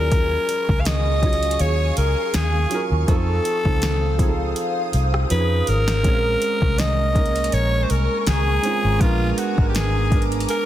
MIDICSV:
0, 0, Header, 1, 6, 480
1, 0, Start_track
1, 0, Key_signature, -5, "minor"
1, 0, Tempo, 740741
1, 76, Time_signature, 4, 2, 24, 8
1, 6905, End_track
2, 0, Start_track
2, 0, Title_t, "Ambient pad"
2, 0, Program_c, 0, 92
2, 0, Note_on_c, 0, 68, 85
2, 0, Note_on_c, 0, 77, 73
2, 0, Note_on_c, 0, 80, 77
2, 0, Note_on_c, 0, 85, 89
2, 1974, Note_off_c, 0, 77, 0
2, 1974, Note_off_c, 0, 80, 0
2, 1974, Note_off_c, 0, 85, 0
2, 1975, Note_off_c, 0, 68, 0
2, 1998, Note_on_c, 0, 77, 74
2, 1999, Note_on_c, 0, 72, 79
2, 1999, Note_on_c, 0, 87, 86
2, 3423, Note_off_c, 0, 72, 0
2, 3898, Note_off_c, 0, 77, 0
2, 3898, Note_off_c, 0, 87, 0
2, 3916, Note_on_c, 0, 70, 78
2, 3916, Note_on_c, 0, 85, 86
2, 3917, Note_on_c, 0, 80, 74
2, 3917, Note_on_c, 0, 82, 76
2, 5817, Note_off_c, 0, 70, 0
2, 5817, Note_off_c, 0, 85, 0
2, 5836, Note_on_c, 0, 86, 85
2, 5837, Note_on_c, 0, 59, 78
2, 6905, Note_off_c, 0, 59, 0
2, 6905, Note_off_c, 0, 80, 0
2, 6905, Note_off_c, 0, 82, 0
2, 6905, Note_off_c, 0, 86, 0
2, 6905, End_track
3, 0, Start_track
3, 0, Title_t, "Alto saxophone"
3, 0, Program_c, 1, 65
3, 0, Note_on_c, 1, 70, 113
3, 521, Note_on_c, 1, 77, 69
3, 531, Note_off_c, 1, 70, 0
3, 561, Note_on_c, 1, 75, 107
3, 571, Note_off_c, 1, 77, 0
3, 1042, Note_on_c, 1, 73, 108
3, 1051, Note_off_c, 1, 75, 0
3, 1277, Note_off_c, 1, 73, 0
3, 1281, Note_on_c, 1, 70, 92
3, 1523, Note_on_c, 1, 68, 92
3, 1532, Note_off_c, 1, 70, 0
3, 1830, Note_off_c, 1, 68, 0
3, 2003, Note_on_c, 1, 69, 102
3, 2934, Note_off_c, 1, 69, 0
3, 3442, Note_on_c, 1, 71, 98
3, 3684, Note_on_c, 1, 70, 108
3, 3693, Note_off_c, 1, 71, 0
3, 4405, Note_on_c, 1, 75, 117
3, 4414, Note_off_c, 1, 70, 0
3, 4883, Note_on_c, 1, 73, 109
3, 4893, Note_off_c, 1, 75, 0
3, 5079, Note_on_c, 1, 72, 75
3, 5088, Note_off_c, 1, 73, 0
3, 5125, Note_on_c, 1, 70, 99
3, 5134, Note_off_c, 1, 72, 0
3, 5314, Note_off_c, 1, 70, 0
3, 5318, Note_on_c, 1, 70, 74
3, 5364, Note_on_c, 1, 68, 106
3, 5373, Note_off_c, 1, 70, 0
3, 5843, Note_on_c, 1, 65, 104
3, 5852, Note_off_c, 1, 68, 0
3, 6039, Note_off_c, 1, 65, 0
3, 6039, Note_on_c, 1, 65, 70
3, 6085, Note_on_c, 1, 66, 93
3, 6094, Note_off_c, 1, 65, 0
3, 6279, Note_off_c, 1, 66, 0
3, 6282, Note_on_c, 1, 67, 68
3, 6327, Note_on_c, 1, 68, 96
3, 6337, Note_off_c, 1, 67, 0
3, 6632, Note_off_c, 1, 68, 0
3, 6805, Note_on_c, 1, 70, 105
3, 6905, Note_off_c, 1, 70, 0
3, 6905, End_track
4, 0, Start_track
4, 0, Title_t, "Felt piano"
4, 0, Program_c, 2, 0
4, 0, Control_c, 2, 64, 127
4, 0, Note_on_c, 2, 54, 79
4, 0, Note_on_c, 2, 61, 79
4, 0, Note_on_c, 2, 65, 78
4, 0, Note_on_c, 2, 68, 95
4, 715, Note_off_c, 2, 54, 0
4, 720, Note_off_c, 2, 61, 0
4, 725, Note_off_c, 2, 65, 0
4, 731, Note_off_c, 2, 68, 0
4, 786, Note_on_c, 2, 54, 75
4, 796, Note_on_c, 2, 61, 71
4, 806, Note_on_c, 2, 65, 74
4, 817, Note_on_c, 2, 68, 87
4, 1675, Note_off_c, 2, 54, 0
4, 1681, Note_off_c, 2, 61, 0
4, 1686, Note_off_c, 2, 65, 0
4, 1691, Note_off_c, 2, 68, 0
4, 1747, Note_on_c, 2, 54, 74
4, 1758, Note_on_c, 2, 61, 69
4, 1768, Note_on_c, 2, 65, 68
4, 1778, Note_on_c, 2, 70, 88
4, 1973, Note_off_c, 2, 54, 0
4, 1978, Note_off_c, 2, 61, 0
4, 1983, Note_off_c, 2, 65, 0
4, 1987, Note_on_c, 2, 53, 98
4, 1988, Note_off_c, 2, 70, 0
4, 1998, Note_on_c, 2, 60, 90
4, 2004, Control_c, 2, 64, 0
4, 2008, Note_on_c, 2, 63, 90
4, 2018, Note_on_c, 2, 69, 108
4, 2133, Control_c, 2, 64, 127
4, 2328, Note_off_c, 2, 53, 0
4, 2333, Note_off_c, 2, 60, 0
4, 2338, Note_off_c, 2, 63, 0
4, 2344, Note_off_c, 2, 69, 0
4, 2357, Note_on_c, 2, 53, 74
4, 2368, Note_on_c, 2, 60, 70
4, 2378, Note_on_c, 2, 63, 73
4, 2389, Note_on_c, 2, 65, 85
4, 2684, Note_off_c, 2, 53, 0
4, 2689, Note_off_c, 2, 60, 0
4, 2694, Note_off_c, 2, 63, 0
4, 2699, Note_off_c, 2, 65, 0
4, 2707, Note_on_c, 2, 53, 85
4, 2718, Note_on_c, 2, 60, 76
4, 2728, Note_on_c, 2, 63, 78
4, 2738, Note_on_c, 2, 68, 79
4, 2773, Note_off_c, 2, 68, 0
4, 2781, Note_on_c, 2, 69, 95
4, 3418, Note_off_c, 2, 53, 0
4, 3428, Note_on_c, 2, 53, 78
4, 3437, Note_off_c, 2, 60, 0
4, 3438, Note_on_c, 2, 61, 67
4, 3439, Note_off_c, 2, 63, 0
4, 3444, Control_c, 2, 64, 0
4, 3449, Note_on_c, 2, 63, 69
4, 3459, Note_on_c, 2, 68, 68
4, 3468, Note_off_c, 2, 69, 0
4, 3492, Note_off_c, 2, 68, 0
4, 3501, Note_on_c, 2, 68, 81
4, 3559, Control_c, 2, 64, 127
4, 3874, Note_off_c, 2, 53, 0
4, 3879, Note_off_c, 2, 61, 0
4, 3885, Note_off_c, 2, 63, 0
4, 3906, Note_on_c, 2, 56, 97
4, 3911, Note_off_c, 2, 68, 0
4, 3917, Note_on_c, 2, 60, 88
4, 3924, Control_c, 2, 64, 0
4, 3927, Note_on_c, 2, 61, 92
4, 3938, Note_on_c, 2, 68, 85
4, 3973, Note_off_c, 2, 68, 0
4, 3980, Note_on_c, 2, 70, 108
4, 4041, Control_c, 2, 64, 127
4, 4574, Note_off_c, 2, 56, 0
4, 4580, Note_off_c, 2, 60, 0
4, 4585, Note_off_c, 2, 61, 0
4, 4611, Note_off_c, 2, 70, 0
4, 4627, Note_on_c, 2, 56, 77
4, 4637, Note_on_c, 2, 58, 72
4, 4648, Note_on_c, 2, 61, 66
4, 4658, Note_on_c, 2, 70, 85
4, 5516, Note_off_c, 2, 56, 0
4, 5521, Note_off_c, 2, 58, 0
4, 5526, Note_off_c, 2, 61, 0
4, 5531, Note_off_c, 2, 70, 0
4, 5587, Note_on_c, 2, 56, 80
4, 5597, Note_on_c, 2, 60, 66
4, 5608, Note_on_c, 2, 61, 71
4, 5617, Note_on_c, 2, 65, 84
4, 5813, Note_off_c, 2, 56, 0
4, 5818, Note_off_c, 2, 60, 0
4, 5823, Note_off_c, 2, 61, 0
4, 5824, Note_on_c, 2, 56, 103
4, 5828, Note_off_c, 2, 65, 0
4, 5836, Note_on_c, 2, 59, 89
4, 5845, Control_c, 2, 64, 0
4, 5846, Note_on_c, 2, 62, 96
4, 5856, Note_on_c, 2, 70, 102
4, 5960, Control_c, 2, 64, 127
4, 6167, Note_off_c, 2, 56, 0
4, 6172, Note_off_c, 2, 59, 0
4, 6177, Note_off_c, 2, 62, 0
4, 6182, Note_off_c, 2, 70, 0
4, 6195, Note_on_c, 2, 56, 78
4, 6205, Note_on_c, 2, 59, 67
4, 6215, Note_on_c, 2, 62, 68
4, 6226, Note_on_c, 2, 70, 84
4, 6522, Note_off_c, 2, 56, 0
4, 6528, Note_off_c, 2, 59, 0
4, 6533, Note_off_c, 2, 62, 0
4, 6538, Note_off_c, 2, 70, 0
4, 6546, Note_on_c, 2, 56, 72
4, 6556, Note_on_c, 2, 59, 66
4, 6567, Note_on_c, 2, 62, 65
4, 6577, Note_on_c, 2, 70, 79
4, 6905, Note_off_c, 2, 56, 0
4, 6905, Note_off_c, 2, 59, 0
4, 6905, Note_off_c, 2, 62, 0
4, 6905, Note_off_c, 2, 70, 0
4, 6905, End_track
5, 0, Start_track
5, 0, Title_t, "Fingered electric bass"
5, 0, Program_c, 3, 33
5, 0, Note_on_c, 3, 39, 100
5, 229, Note_off_c, 3, 39, 0
5, 449, Note_on_c, 3, 37, 94
5, 1012, Note_off_c, 3, 37, 0
5, 1038, Note_on_c, 3, 39, 99
5, 1233, Note_off_c, 3, 39, 0
5, 1280, Note_on_c, 3, 37, 93
5, 1384, Note_off_c, 3, 37, 0
5, 1519, Note_on_c, 3, 39, 103
5, 1714, Note_off_c, 3, 39, 0
5, 1888, Note_on_c, 3, 39, 91
5, 1977, Note_off_c, 3, 39, 0
5, 1999, Note_on_c, 3, 41, 111
5, 2193, Note_off_c, 3, 41, 0
5, 2369, Note_on_c, 3, 37, 89
5, 2932, Note_off_c, 3, 37, 0
5, 3201, Note_on_c, 3, 36, 88
5, 3395, Note_off_c, 3, 36, 0
5, 3441, Note_on_c, 3, 41, 108
5, 3635, Note_off_c, 3, 41, 0
5, 3681, Note_on_c, 3, 32, 88
5, 3919, Note_off_c, 3, 32, 0
5, 3919, Note_on_c, 3, 34, 113
5, 4114, Note_off_c, 3, 34, 0
5, 4290, Note_on_c, 3, 36, 90
5, 4852, Note_off_c, 3, 36, 0
5, 4881, Note_on_c, 3, 34, 98
5, 5075, Note_off_c, 3, 34, 0
5, 5121, Note_on_c, 3, 36, 85
5, 5225, Note_off_c, 3, 36, 0
5, 5361, Note_on_c, 3, 37, 103
5, 5555, Note_off_c, 3, 37, 0
5, 5730, Note_on_c, 3, 32, 84
5, 5819, Note_off_c, 3, 32, 0
5, 5839, Note_on_c, 3, 34, 114
5, 6033, Note_off_c, 3, 34, 0
5, 6210, Note_on_c, 3, 32, 98
5, 6772, Note_off_c, 3, 32, 0
5, 6905, End_track
6, 0, Start_track
6, 0, Title_t, "Drums"
6, 75, Note_on_c, 9, 42, 66
6, 76, Note_on_c, 9, 36, 115
6, 140, Note_off_c, 9, 36, 0
6, 140, Note_off_c, 9, 42, 0
6, 316, Note_on_c, 9, 42, 68
6, 381, Note_off_c, 9, 42, 0
6, 447, Note_on_c, 9, 36, 93
6, 512, Note_off_c, 9, 36, 0
6, 553, Note_on_c, 9, 42, 80
6, 560, Note_on_c, 9, 38, 119
6, 618, Note_off_c, 9, 42, 0
6, 625, Note_off_c, 9, 38, 0
6, 794, Note_on_c, 9, 36, 93
6, 795, Note_on_c, 9, 42, 40
6, 859, Note_off_c, 9, 36, 0
6, 860, Note_off_c, 9, 42, 0
6, 860, Note_on_c, 9, 42, 49
6, 924, Note_off_c, 9, 42, 0
6, 924, Note_on_c, 9, 42, 57
6, 979, Note_off_c, 9, 42, 0
6, 979, Note_on_c, 9, 42, 63
6, 1033, Note_off_c, 9, 42, 0
6, 1033, Note_on_c, 9, 42, 72
6, 1098, Note_off_c, 9, 42, 0
6, 1275, Note_on_c, 9, 42, 68
6, 1340, Note_off_c, 9, 42, 0
6, 1515, Note_on_c, 9, 42, 73
6, 1518, Note_on_c, 9, 38, 101
6, 1579, Note_off_c, 9, 42, 0
6, 1583, Note_off_c, 9, 38, 0
6, 1754, Note_on_c, 9, 42, 68
6, 1819, Note_off_c, 9, 42, 0
6, 1996, Note_on_c, 9, 42, 62
6, 1997, Note_on_c, 9, 36, 105
6, 2061, Note_off_c, 9, 36, 0
6, 2061, Note_off_c, 9, 42, 0
6, 2237, Note_on_c, 9, 42, 66
6, 2301, Note_off_c, 9, 42, 0
6, 2368, Note_on_c, 9, 36, 92
6, 2432, Note_off_c, 9, 36, 0
6, 2474, Note_on_c, 9, 42, 80
6, 2481, Note_on_c, 9, 38, 113
6, 2539, Note_off_c, 9, 42, 0
6, 2546, Note_off_c, 9, 38, 0
6, 2715, Note_on_c, 9, 36, 98
6, 2716, Note_on_c, 9, 42, 63
6, 2780, Note_off_c, 9, 36, 0
6, 2781, Note_off_c, 9, 42, 0
6, 2955, Note_on_c, 9, 42, 72
6, 3020, Note_off_c, 9, 42, 0
6, 3196, Note_on_c, 9, 42, 67
6, 3261, Note_off_c, 9, 42, 0
6, 3330, Note_on_c, 9, 37, 87
6, 3395, Note_off_c, 9, 37, 0
6, 3436, Note_on_c, 9, 42, 79
6, 3500, Note_off_c, 9, 42, 0
6, 3675, Note_on_c, 9, 42, 68
6, 3740, Note_off_c, 9, 42, 0
6, 3809, Note_on_c, 9, 38, 92
6, 3873, Note_off_c, 9, 38, 0
6, 3916, Note_on_c, 9, 42, 66
6, 3917, Note_on_c, 9, 36, 109
6, 3981, Note_off_c, 9, 42, 0
6, 3982, Note_off_c, 9, 36, 0
6, 4158, Note_on_c, 9, 42, 67
6, 4223, Note_off_c, 9, 42, 0
6, 4288, Note_on_c, 9, 36, 99
6, 4353, Note_off_c, 9, 36, 0
6, 4396, Note_on_c, 9, 42, 80
6, 4403, Note_on_c, 9, 38, 118
6, 4461, Note_off_c, 9, 42, 0
6, 4468, Note_off_c, 9, 38, 0
6, 4636, Note_on_c, 9, 36, 99
6, 4637, Note_on_c, 9, 42, 38
6, 4700, Note_off_c, 9, 36, 0
6, 4702, Note_off_c, 9, 42, 0
6, 4702, Note_on_c, 9, 42, 45
6, 4766, Note_off_c, 9, 42, 0
6, 4767, Note_on_c, 9, 42, 58
6, 4822, Note_off_c, 9, 42, 0
6, 4822, Note_on_c, 9, 42, 66
6, 4875, Note_off_c, 9, 42, 0
6, 4875, Note_on_c, 9, 42, 73
6, 4940, Note_off_c, 9, 42, 0
6, 5118, Note_on_c, 9, 42, 66
6, 5183, Note_off_c, 9, 42, 0
6, 5356, Note_on_c, 9, 42, 74
6, 5360, Note_on_c, 9, 38, 97
6, 5421, Note_off_c, 9, 42, 0
6, 5425, Note_off_c, 9, 38, 0
6, 5596, Note_on_c, 9, 42, 69
6, 5660, Note_off_c, 9, 42, 0
6, 5837, Note_on_c, 9, 36, 107
6, 5837, Note_on_c, 9, 42, 69
6, 5901, Note_off_c, 9, 36, 0
6, 5902, Note_off_c, 9, 42, 0
6, 6077, Note_on_c, 9, 42, 69
6, 6142, Note_off_c, 9, 42, 0
6, 6208, Note_on_c, 9, 36, 104
6, 6273, Note_off_c, 9, 36, 0
6, 6316, Note_on_c, 9, 42, 76
6, 6323, Note_on_c, 9, 38, 111
6, 6381, Note_off_c, 9, 42, 0
6, 6388, Note_off_c, 9, 38, 0
6, 6555, Note_on_c, 9, 36, 100
6, 6556, Note_on_c, 9, 42, 38
6, 6620, Note_off_c, 9, 36, 0
6, 6621, Note_off_c, 9, 42, 0
6, 6622, Note_on_c, 9, 42, 48
6, 6686, Note_off_c, 9, 42, 0
6, 6686, Note_on_c, 9, 42, 58
6, 6742, Note_off_c, 9, 42, 0
6, 6742, Note_on_c, 9, 42, 66
6, 6795, Note_off_c, 9, 42, 0
6, 6795, Note_on_c, 9, 42, 72
6, 6860, Note_off_c, 9, 42, 0
6, 6905, End_track
0, 0, End_of_file